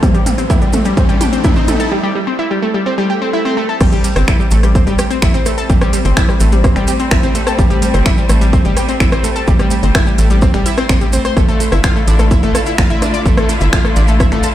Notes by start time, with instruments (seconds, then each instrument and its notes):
Already playing: string section A2 E3 C4, riser
0.03 synth pluck G3, string section A3, kick, closed hi-hat, mid tom, maracas
0.14 synth pluck G3, closed hi-hat, maracas
0.26 synth pluck G3, closed hi-hat, mid tom, maracas
0.38 synth pluck C4, closed hi-hat, maracas
0.50 synth pluck E4, kick, closed hi-hat, mid tom, maracas
0.62 synth pluck G3, closed hi-hat, maracas
0.73 synth pluck A3, closed hi-hat, mid tom, maracas
0.85 synth pluck G3, closed hi-hat, maracas
0.97 synth pluck C4, kick, closed hi-hat, mid tom, maracas
1.09 synth pluck G3, closed hi-hat, maracas
1.21 synth pluck G4, closed hi-hat, mid tom, maracas
1.33 synth pluck C4, closed hi-hat, maracas
1.44 synth pluck E4, kick, closed hi-hat, mid tom, maracas
1.56 synth pluck C4, maracas
1.68 synth pluck A3, closed hi-hat, mid tom, maracas
1.80 synth pluck A4, closed hi-hat, maracas
1.92 synth pluck G3
2.03 synth pluck G3
2.15 synth pluck G3
2.27 synth pluck C4
2.39 synth pluck E4
2.51 synth pluck G3
2.62 synth pluck A3
2.74 synth pluck G3
2.86 synth pluck C4, swell
2.98 synth pluck G3
3.10 synth pluck G4
3.22 synth pluck C4
3.33 synth pluck E4
3.45 synth pluck C4
3.57 synth pluck A3
3.69 synth pluck A4
3.81 analog synth bass A1, string section G3 A3 C4, synth pluck G3, kick, cross-stick, closed hi-hat, crash, maracas
3.92 synth pluck G3, closed hi-hat, maracas
4.04 synth pluck G3, closed hi-hat, maracas
4.16 analog synth bass G1, synth pluck C4, cross-stick, closed hi-hat, maracas
4.28 synth pluck E4, finger snap, kick, closed hi-hat, maracas
4.40 synth pluck G3, maracas
4.51 analog synth bass A1, synth pluck A3, closed hi-hat, maracas
4.63 synth pluck G3, cross-stick, closed hi-hat, maracas
4.75 synth pluck C4, kick, closed hi-hat, maracas
4.87 analog synth bass A1, synth pluck G3, closed hi-hat, maracas
4.99 synth pluck G4, cross-stick, closed hi-hat, maracas
5.11 synth pluck C4, closed hi-hat, maracas
5.22 analog synth bass A1, synth pluck E4, finger snap, kick, closed hi-hat, maracas
5.34 synth pluck C4, closed hi-hat, maracas
5.46 synth pluck A3, cross-stick, closed hi-hat, maracas
5.58 synth pluck A4, closed hi-hat, maracas
5.70 analog synth bass A1, synth pluck G3, kick, closed hi-hat, maracas
5.81 synth pluck G3, cross-stick, closed hi-hat, maracas
5.93 synth pluck G3, closed hi-hat, maracas
6.05 analog synth bass G1, synth pluck C4, closed hi-hat, maracas
6.17 synth pluck E4, finger snap, kick, closed hi-hat, maracas
6.29 synth pluck G3, cross-stick, maracas
6.40 analog synth bass A1, synth pluck A3, closed hi-hat, maracas
6.52 synth pluck G3, closed hi-hat, maracas
6.64 synth pluck C4, kick, cross-stick, closed hi-hat, maracas
6.76 analog synth bass A1, synth pluck G3, finger snap, closed hi-hat, maracas
6.87 synth pluck G4, closed hi-hat, maracas
7.00 synth pluck C4, closed hi-hat, maracas
7.11 analog synth bass A1, synth pluck E4, finger snap, kick, cross-stick, closed hi-hat, maracas
7.23 synth pluck C4, closed hi-hat, maracas
7.35 synth pluck A3, closed hi-hat, maracas
7.47 synth pluck A4, cross-stick, closed hi-hat, maracas
7.59 analog synth bass A1, synth pluck G3, kick, closed hi-hat, maracas
7.70 synth pluck G3, closed hi-hat, maracas
7.82 synth pluck G3, closed hi-hat, maracas
7.94 analog synth bass G1, synth pluck C4, cross-stick, closed hi-hat, maracas
8.06 synth pluck E4, finger snap, kick, closed hi-hat, maracas
8.17 synth pluck G3, maracas
8.29 analog synth bass A1, synth pluck A3, cross-stick, closed hi-hat, maracas
8.41 synth pluck G3, closed hi-hat, maracas
8.53 synth pluck C4, kick, closed hi-hat, maracas
8.65 analog synth bass A1, synth pluck G3, closed hi-hat, maracas
8.77 synth pluck G4, cross-stick, closed hi-hat, maracas
8.89 synth pluck C4, closed hi-hat, maracas
9.00 analog synth bass A1, synth pluck E4, finger snap, kick, closed hi-hat, maracas
9.12 synth pluck C4, cross-stick, closed hi-hat, maracas
9.24 synth pluck A3, closed hi-hat, maracas
9.36 synth pluck A4, closed hi-hat, maracas
9.47 analog synth bass A1, synth pluck G3, kick, closed hi-hat, maracas
9.59 synth pluck G3, cross-stick, closed hi-hat, maracas
9.71 synth pluck G3, closed hi-hat, maracas
9.83 analog synth bass G1, synth pluck C4, closed hi-hat, maracas
9.95 synth pluck E4, finger snap, kick, cross-stick, closed hi-hat, maracas
10.07 synth pluck G3, maracas
10.18 analog synth bass A1, synth pluck A3, closed hi-hat, maracas
10.30 synth pluck G3, closed hi-hat, maracas
10.42 synth pluck C4, kick, cross-stick, closed hi-hat, maracas
10.54 analog synth bass A1, synth pluck G3, finger snap, closed hi-hat, maracas
10.66 synth pluck E4, closed hi-hat, maracas
10.77 synth pluck C4, cross-stick, closed hi-hat, maracas
10.89 analog synth bass A1, synth pluck C4, finger snap, kick, closed hi-hat, maracas
11.01 synth pluck G3, closed hi-hat, maracas
11.13 synth pluck C4, closed hi-hat, maracas
11.25 synth pluck C5, cross-stick, closed hi-hat, maracas
11.36 analog synth bass A1, string section D3 E4 F4, synth pluck A3, kick, cross-stick, closed hi-hat, maracas
11.48 synth pluck A3, closed hi-hat, maracas
11.60 synth pluck A3, closed hi-hat, maracas
11.72 analog synth bass G1, synth pluck E4, cross-stick, closed hi-hat, maracas
11.84 synth pluck F4, finger snap, kick, closed hi-hat, maracas
11.96 synth pluck A3, maracas
12.07 analog synth bass A1, synth pluck D4, closed hi-hat, maracas
12.19 synth pluck A3, cross-stick, closed hi-hat, maracas
12.31 synth pluck E4, kick, closed hi-hat, maracas
12.43 analog synth bass A1, synth pluck A3, closed hi-hat, maracas
12.55 synth pluck A4, cross-stick, closed hi-hat, maracas
12.66 synth pluck E4, closed hi-hat, maracas
12.78 analog synth bass A1, synth pluck F4, finger snap, kick, closed hi-hat, maracas
12.90 synth pluck E4, closed hi-hat, maracas
13.02 synth pluck D4, cross-stick, closed hi-hat, maracas
13.14 synth pluck D5, closed hi-hat, maracas
13.26 analog synth bass A1, synth pluck A3, kick, closed hi-hat, maracas
13.37 synth pluck A3, cross-stick, closed hi-hat, maracas
13.49 synth pluck A3, closed hi-hat, maracas
13.60 analog synth bass G1, synth pluck E4, closed hi-hat, maracas
13.73 synth pluck F4, finger snap, kick, closed hi-hat, maracas
13.85 synth pluck A3, cross-stick, maracas
13.96 analog synth bass A1, synth pluck D4, closed hi-hat, maracas
14.07 synth pluck A3, closed hi-hat, maracas
14.20 synth pluck E4, kick, cross-stick, closed hi-hat, maracas
14.31 analog synth bass A1, synth pluck A3, finger snap, closed hi-hat, maracas
14.43 synth pluck A4, closed hi-hat, maracas